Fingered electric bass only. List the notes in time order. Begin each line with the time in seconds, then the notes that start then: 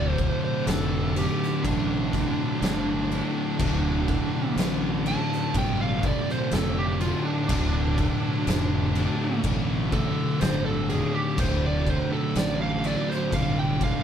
Already playing: D1
0.67 F1
1.64 A1
2.61 G1
3.60 D1
4.56 A1
5.55 G1
6.52 F1
7.49 D1
8.47 F1
9.44 A1
10.42 G1
11.38 D1
12.36 A1
13.33 G1